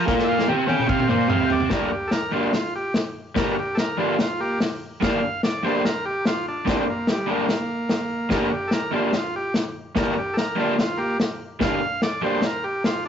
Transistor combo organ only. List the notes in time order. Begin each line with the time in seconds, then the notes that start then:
0.24 E5
0.29 F5
0.69 G5
0.89 F5
1.09 C5
1.30 F5
1.52 D5
1.72 A#4
1.88 F#4 G4
2.08 A4
2.12 A#4
2.33 F4
2.54 F4
2.76 G4
3.38 A#4
3.54 F#4
3.59 G4
3.75 A4
3.80 A#4
4.00 F4
4.22 F4
4.40 A#3 G4
5.02 F5
5.44 D5
5.65 C5
5.85 A#4
6.06 G4
6.27 F4
6.48 D4
6.69 C4
6.90 A#3
7.12 G3
7.32 A#3
8.32 A#4
8.49 F#4
8.54 G4
8.68 A4
8.73 A#4
8.95 F4
9.16 F4
9.36 G4
9.98 A#4
10.13 F#4
10.18 G4
10.34 A4
10.38 A#4
10.60 F4
10.80 F4
10.97 A#3 G4
11.62 F5
12.03 D5
12.24 C5
12.46 A#4
12.64 G4
12.85 F4